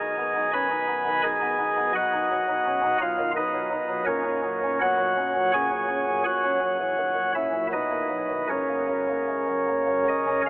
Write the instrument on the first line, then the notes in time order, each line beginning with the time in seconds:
pipe organ
Already playing: B1 B2 G#4 D#5 G#5
0.01 D#4
0.18 B3
0.36 D#4
0.53 C#4 B4 G#5 B5
0.71 D#4
0.89 B3
1.07 D#3
1.23 D#4 G#4 D#5 G#5
1.42 B3
1.60 D#4
1.77 B3
1.95 B1 B2 F#4 D#5 F#5
2.13 D#4
2.31 F#3
2.49 D#4
2.66 C#4
2.84 D#4
3.01 F#3 F4 F5
3.20 D#3
3.36 D#4 B4 D#5
3.54 F#3
3.72 D#4
3.89 F#3
4.06 A#1 A#2 C#4 A#4 C#5
4.25 C#4
4.44 F#3
4.64 C#4
4.81 B3 F#4 C#5 F#5
4.99 F#3
5.17 C#4
5.36 F#3
5.54 C#4 G#4 C#5 G#5
5.72 F#3
5.89 C#4
6.07 F#3
6.25 A#1 A#2 F#4 C#5 F#5
6.44 C#4
6.61 F#3
6.80 E3
6.98 D#3
7.17 F#3
7.35 C#4 E4 E5
7.54 F#3
7.72 B1 B2 D#4 B4 D#5
7.91 A#3
8.10 F#3
8.30 D#3
8.50 C#2 C#3 C#4 A#4 C#5
8.69 A#3
8.89 F#3
9.10 A#3
9.29 G#3
9.48 F#3
9.68 A#3
9.88 F#3
10.08 C#2 C#3 D#5
10.28 C#4
10.46 F5